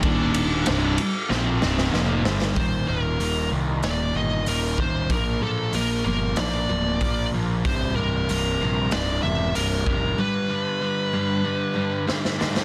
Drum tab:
RD |x-x-x-x---------|----------------|----------------|----------------|
HH |----------------|o---o---o---o---|o---o---o---o---|o---o---o---o---|
SD |----o---o-ooo-oo|--------o-------|--------o-------|--------o-------|
BD |o---------------|o-------------o-|o-----------o---|o-------------o-|

RD |----------------|
HH |----------------|
SD |------------oooo|
BD |----------------|